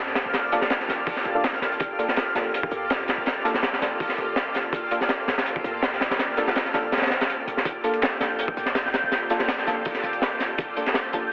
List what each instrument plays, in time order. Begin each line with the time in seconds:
Already playing: 808-style bass E2, synth texture F6
0.07 snare
0.15 snare, closed hi-hat
0.25 808-style bass G1
0.33 snare, closed hi-hat
0.52 synth stab A#3 D4 F4 A4, snare, closed hi-hat
0.61 snare
0.70 snare, closed hi-hat
0.80 snare
0.89 808-style bass A#1, snare, closed hi-hat
1.07 kick, open hi-hat
1.16 snare
1.25 808-style bass A#1, closed hi-hat
1.35 synth stab A#3 D4 F4 A4
1.44 snare, closed hi-hat
1.53 snare
1.62 808-style bass F1, snare, closed hi-hat
1.72 closed hi-hat
1.80 808-style bass G1, kick, closed hi-hat
1.99 synth stab A#3 D4 F4 A4, closed hi-hat
2.08 snare
2.16 snare, closed hi-hat
2.35 808-style bass A#1, synth stab A#3 D4 F4 A4, snare, closed hi-hat
2.54 closed hi-hat
2.63 kick
2.71 808-style bass E2, closed hi-hat
2.90 snare, closed hi-hat
2.99 snare
3.08 snare, closed hi-hat
3.18 808-style bass G1
3.26 snare, closed hi-hat
3.45 synth stab A#3 D4 F4 A4, snare, closed hi-hat
3.54 snare
3.63 snare, closed hi-hat
3.73 snare
3.81 808-style bass A#1, synth stab A#3 D4 F4 A4, snare, closed hi-hat
4.00 kick, open hi-hat
4.09 snare
4.18 808-style bass G1, closed hi-hat
4.36 snare, closed hi-hat
4.54 snare, closed hi-hat
4.73 808-style bass G1, kick, closed hi-hat
4.91 synth stab A#3 D4 F4 A4, closed hi-hat
5.01 snare
5.09 snare, closed hi-hat
5.28 808-style bass A#1, snare, closed hi-hat
5.38 snare, closed hi-hat
5.46 closed hi-hat
5.56 kick
5.64 808-style bass E2, closed hi-hat
5.82 snare, closed hi-hat
5.93 snare
6.01 snare, closed hi-hat
6.11 808-style bass G1, snare, closed hi-hat
6.19 snare, closed hi-hat
6.37 synth stab A#3 D4 F4 A4, snare, closed hi-hat
6.47 snare
6.56 snare, closed hi-hat
6.65 snare
6.74 808-style bass A#1, synth stab A#3 D4 F4 A4, snare, closed hi-hat
6.92 snare, closed hi-hat
6.97 snare, closed hi-hat
7.02 snare, closed hi-hat
7.06 snare, closed hi-hat
7.10 snare, closed hi-hat
7.21 snare, closed hi-hat
7.30 closed hi-hat
7.47 808-style bass F1, closed hi-hat
7.57 snare
7.65 808-style bass G1, synth texture G6, kick, closed hi-hat, tambourine
7.84 synth stab A#3 D4 F4 A4, closed hi-hat, tambourine
7.94 closed hi-hat
8.02 snare, closed hi-hat, tambourine
8.20 808-style bass A#1, synth stab A#3 D4 F4 A4, snare, closed hi-hat, tambourine
8.39 closed hi-hat, tambourine
8.48 kick
8.57 808-style bass E2, snare, closed hi-hat, tambourine
8.66 snare, closed hi-hat
8.75 snare, closed hi-hat, tambourine
8.86 snare
8.93 snare, closed hi-hat, tambourine
9.03 808-style bass G1
9.12 snare, closed hi-hat, tambourine
9.29 synth stab A#3 D4 F4 A4, snare, closed hi-hat, tambourine
9.39 snare, closed hi-hat
9.48 snare, closed hi-hat, tambourine
9.58 snare
9.67 808-style bass A#1, synth stab A#3 D4 F4 A4, snare, closed hi-hat, tambourine
9.85 kick, open hi-hat, tambourine
9.94 snare, closed hi-hat
10.03 808-style bass G1, closed hi-hat, tambourine
10.13 closed hi-hat
10.22 snare, closed hi-hat
10.40 snare, closed hi-hat, tambourine
10.58 808-style bass G1, kick, closed hi-hat, tambourine
10.76 synth stab A#3 D4 F4 A4, closed hi-hat, tambourine
10.86 snare, closed hi-hat
10.94 snare, closed hi-hat, tambourine
11.13 808-style bass A#1, synth stab A#3 D4 F4 A4, closed hi-hat, tambourine